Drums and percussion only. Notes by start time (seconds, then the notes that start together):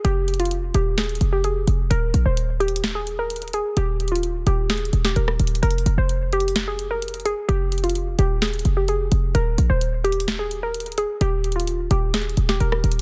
0.05 closed hi-hat
0.28 closed hi-hat
0.34 closed hi-hat
0.40 closed hi-hat
0.45 closed hi-hat
0.51 closed hi-hat
0.74 closed hi-hat
0.98 snare, closed hi-hat
1.04 closed hi-hat
1.09 closed hi-hat
1.15 closed hi-hat
1.21 closed hi-hat
1.44 closed hi-hat
1.67 closed hi-hat
1.91 closed hi-hat
2.14 closed hi-hat
2.37 closed hi-hat
2.61 closed hi-hat
2.68 closed hi-hat
2.76 closed hi-hat
2.84 snare, closed hi-hat
3.07 closed hi-hat
3.30 closed hi-hat
3.36 closed hi-hat
3.42 closed hi-hat
3.48 closed hi-hat
3.53 closed hi-hat
3.77 closed hi-hat
4.00 closed hi-hat
4.08 closed hi-hat
4.16 closed hi-hat
4.23 closed hi-hat
4.47 closed hi-hat
4.70 snare, closed hi-hat
4.78 closed hi-hat
4.85 closed hi-hat
4.93 closed hi-hat
5.05 snare
5.16 closed hi-hat
5.28 cross-stick
5.39 closed hi-hat, open hi-hat
5.47 closed hi-hat
5.55 closed hi-hat
5.63 closed hi-hat
5.71 closed hi-hat
5.78 closed hi-hat
5.86 closed hi-hat
6.09 closed hi-hat
6.33 closed hi-hat
6.40 closed hi-hat
6.48 closed hi-hat
6.56 snare, closed hi-hat
6.79 closed hi-hat
7.02 closed hi-hat
7.08 closed hi-hat
7.14 closed hi-hat
7.20 closed hi-hat
7.26 closed hi-hat
7.49 closed hi-hat
7.72 closed hi-hat
7.78 closed hi-hat
7.84 closed hi-hat
7.90 closed hi-hat
7.95 closed hi-hat
8.19 closed hi-hat
8.42 snare, closed hi-hat
8.48 closed hi-hat
8.53 closed hi-hat
8.59 closed hi-hat
8.65 closed hi-hat
8.88 closed hi-hat
9.12 closed hi-hat
9.35 closed hi-hat
9.58 closed hi-hat
9.81 closed hi-hat
10.05 closed hi-hat
10.12 closed hi-hat
10.20 closed hi-hat
10.28 snare, closed hi-hat
10.51 closed hi-hat
10.74 closed hi-hat
10.80 closed hi-hat
10.86 closed hi-hat
10.92 closed hi-hat
10.98 closed hi-hat
11.21 closed hi-hat
11.44 closed hi-hat
11.52 closed hi-hat
11.60 closed hi-hat
11.67 closed hi-hat
11.91 closed hi-hat
12.14 snare, closed hi-hat
12.22 closed hi-hat
12.29 closed hi-hat
12.37 closed hi-hat
12.49 snare
12.60 closed hi-hat
12.72 cross-stick
12.84 closed hi-hat, open hi-hat
12.92 closed hi-hat